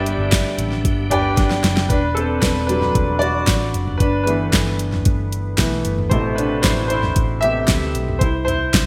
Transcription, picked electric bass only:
Already playing: G1
0.19 G1
0.58 A1
0.85 G1
1.64 F#1
1.90 E1
2.42 E1
2.95 E1
3.48 A1
3.74 F#1
4.00 G1
4.53 G1
5.06 G1
5.59 B1
5.85 G1
6.11 A1
6.64 A1
7.16 A1
7.69 D2
7.95 B1
8.21 C2
8.74 C2

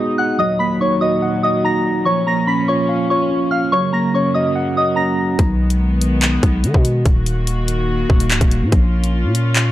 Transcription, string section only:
Already playing: B2 G#3 D#4
0.39 D#2 A#2 F#3
2.06 F3 C#4
3.72 F#2 C#3 A#3
5.39 D#3 G#3 B3
7.06 D#3 A#3 F#4
8.72 C#4 F4

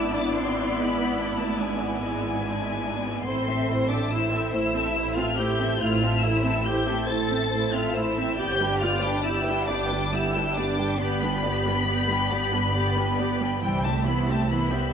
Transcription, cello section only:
Already playing: E4
0.15 D4
0.35 C4
0.76 B3
1.39 A3
1.60 G#3
2.01 G#3
3.26 C4
3.88 D4
4.09 E4
4.51 E4
5.15 F4
5.37 G4
5.80 F4
6.22 E4
6.65 G4
7.08 A4
7.74 F4
7.95 E4
8.38 G4
8.81 F4
9.03 D4
9.24 E4
9.68 D4
10.12 E4
10.57 D4
11.01 B3
13.64 G3
13.87 A3
14.07 B3
14.30 A3
14.52 B3

